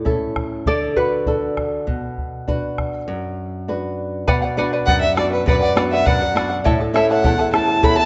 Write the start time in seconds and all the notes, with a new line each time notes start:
Already playing: A2
0.05 C#4 E4 A4, bombo low
0.36 bombo rim, bombo low
0.66 D3 A4 D5, bombo low
0.96 F#4 B4, bombo low
1.26 D4 F#4 A4, bombo low
1.57 bombo rim, bombo low
1.87 B2, bombo low
2.18 bombo low
2.48 D4 F#4 B4, bombo low
2.78 bombo rim, bombo low
3.08 F#2
3.68 D4 F#4 B4
4.28 B2 B4 D5 F#5, bombo low
4.42 D5 F#5
4.57 B3 D4 F#4 B4 D5 F#5
4.73 B4 D5 F#5
4.86 F#2 B4 D5 F#5, bombo low
5.01 D5 E5 F#5
5.16 B3 D4 F#4 B4 D5 F#5, bombo rim
5.32 B4 D5 F#5
5.46 F#2 B4 D5 F#5, bombo low
5.53 B4
5.61 D5 F#5
5.76 B3 D4 F#4 B4 D5 F#5, bombo rim
5.91 B4 D5 E5 F#5
6.06 F#2 B4 D5 F#5, bombo low
6.21 D5 F#5
6.35 B3 D4 F#4 B4 D5 F#5, bombo rim
6.50 D5 F#5
6.64 A2 E4 A4 C#5 E5 A5, bombo low
6.80 E4 A4 A5
6.93 A3 C#4 E4 A4 C#5 E5 A5, bombo rim
7.10 E4 A4 C#5 E5 F#5 A5
7.24 E2 E4 A4 E5 A5, bombo low
7.39 E4 A4 A5
7.52 A3 C#4 E4 A4 E5 A5, bombo rim
7.68 E4 A4 A5
7.83 E2 E4 A4 C#5 E5 A5 B5, bombo low
7.97 E4 A4 A5